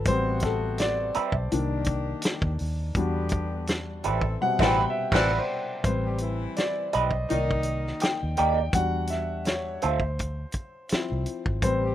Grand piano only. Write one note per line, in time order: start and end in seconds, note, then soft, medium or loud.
0.07 1.47 G3 medium
0.07 1.48 C4 medium
0.07 1.48 B4 medium
0.07 0.40 C5 loud
0.44 0.80 A4 medium
0.80 2.56 D5 medium
1.52 2.56 D#3 medium
1.52 2.56 A#3 medium
1.52 2.56 D4 medium
2.96 3.45 G3 medium
2.96 3.45 D4 medium
2.96 3.45 F#4 medium
4.41 5.82 B2 medium
4.41 5.81 C3 medium
4.41 5.81 G3 medium
4.41 4.63 F#5 loud
4.66 4.87 G5 medium
4.90 4.95 E5 medium
5.14 5.20 D5 medium
5.39 5.71 C5 medium
5.85 7.26 G3 soft
5.85 7.26 C4 medium
5.85 7.26 B4 medium
5.85 6.59 C5 medium
6.57 6.94 D5 medium
6.93 8.05 D#5 medium
7.30 8.34 D#3 soft
7.30 8.34 A#3 soft
7.30 8.34 D5 medium
8.02 8.36 G5 medium
8.38 8.71 G5 medium
8.74 9.23 G3 medium
8.74 9.24 D4 soft
8.74 9.24 F#4 medium
8.74 9.11 F#5 loud
9.10 9.47 E5 medium
9.46 9.80 C#5 medium
9.82 11.23 C5 medium
10.91 11.40 F3 soft
10.91 11.40 C4 soft
10.91 11.41 E4 medium
11.63 11.95 G3 medium
11.63 11.95 C4 medium
11.63 11.95 B4 soft
11.63 11.95 C5 medium